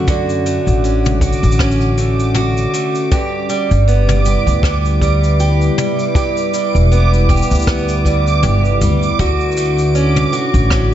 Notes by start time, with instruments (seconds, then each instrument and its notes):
Already playing: upright bass F#2, analog synth pad D3 C#4 F#5, steel-string acoustic guitar A3 C#4, synth texture D6
0.08 steel-string acoustic guitar D3 F#4, kick, cabasa
0.29 cabasa
0.46 steel-string acoustic guitar A3, cabasa
0.67 upright bass A1, cabasa
0.84 steel-string acoustic guitar C#4, cabasa
1.05 mid tom, cabasa
1.21 steel-string acoustic guitar F#4, kick, cabasa
1.33 cabasa
1.43 upright bass A1, cabasa
1.51 cabasa
1.59 steel-string acoustic guitar C#4, kick, cross-stick, cabasa
1.71 cabasa
1.81 cabasa
1.98 steel-string acoustic guitar A3, cabasa
2.20 cabasa
2.35 steel-string acoustic guitar F#4, mid tom, cabasa
2.57 cabasa
2.74 steel-string acoustic guitar A3, cabasa
2.95 cabasa
3.12 steel-string acoustic guitar G2 G4, analog synth pad G3, kick, cabasa
3.49 steel-string acoustic guitar G3, cabasa
3.57 analog synth pad B4
3.71 upright bass G1, cabasa
3.88 steel-string acoustic guitar B3, cabasa
4.09 analog synth pad E4, mid tom, cabasa
4.25 steel-string acoustic guitar G4, cabasa
4.47 upright bass D2, kick, cabasa
4.63 steel-string acoustic guitar B3, kick, cross-stick, cabasa
4.85 cabasa
5.02 steel-string acoustic guitar G3, kick, cabasa
5.24 cabasa
5.40 steel-string acoustic guitar G4, cabasa
5.62 cabasa
5.78 steel-string acoustic guitar G3, mid tom, cabasa
5.99 cabasa
6.15 steel-string acoustic guitar G2 G4, kick, cabasa
6.37 cabasa
6.54 steel-string acoustic guitar G3, cabasa
6.75 upright bass E1, cabasa
6.92 steel-string acoustic guitar B3, cabasa
7.14 cabasa
7.29 steel-string acoustic guitar G4, kick, cabasa
7.37 cabasa
7.42 cabasa
7.51 upright bass D2, cabasa
7.55 cabasa
7.59 cabasa
7.62 cabasa
7.67 steel-string acoustic guitar B3, kick, cross-stick, cabasa
7.78 cabasa
7.89 cabasa
8.05 steel-string acoustic guitar G3, kick, cabasa
8.27 cabasa
8.43 upright bass G1, steel-string acoustic guitar G4, mid tom, cabasa
8.65 cabasa
8.81 upright bass D2, steel-string acoustic guitar G3, cabasa
9.03 cabasa
9.19 upright bass D2, analog synth pad D3, steel-string acoustic guitar D3 F#4, kick, cabasa
9.40 cabasa
9.52 cabasa
9.57 steel-string acoustic guitar A3, cabasa
9.64 cabasa
9.78 cabasa
9.95 steel-string acoustic guitar C#4, cabasa
10.16 mid tom, cabasa
10.27 analog synth pad F#4
10.33 steel-string acoustic guitar F#4, cabasa
10.54 upright bass A1, kick, cabasa
10.70 steel-string acoustic guitar C#4, kick, cross-stick, cabasa
10.81 analog synth pad C#4